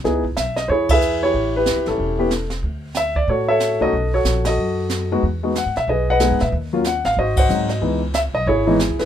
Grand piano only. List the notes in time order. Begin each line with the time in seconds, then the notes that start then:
0.04 B3 D#4 E4 G#4
0.37 E5
0.56 D#5
0.68 E4 G#4 C5 C#5
0.91 G#4 B4 E5
1.23 E4 G4 C#5
1.56 E4 G4 B4
1.88 C#4 E4 A4
2.19 B3 C#4 E4 G4
2.97 E5
3.16 D5
3.29 F#4 A4 C#5
3.48 A4 C#5 E5
3.80 A3 C#4 D#4 F#4 A4 D#5
4.14 F#4 A4 C#5
4.47 F#4 A4 D#5
5.12 G#3 B3 D#4 F#4
5.43 G#3 B3 D#4 F#4
5.58 F#5
5.77 E5
5.89 G#4 B4 D#5
6.10 B4 D#5 F#5
6.20 G#3 B3 D#4 G#4
6.41 E5
6.73 F#3 A#3 C#4 F4
6.87 F#5
7.05 F5
7.19 F#4 C5 D#5
7.38 C5 D#5 F#5
7.49 F#3 G#3 C4 D#4
7.70 D#5
7.82 E3 G#3 B3 D#4
8.15 E5
8.35 D#5
8.47 E4 G#4 C#5
8.67 E3 G#3 B3 D#4
8.99 E4 G#4 B4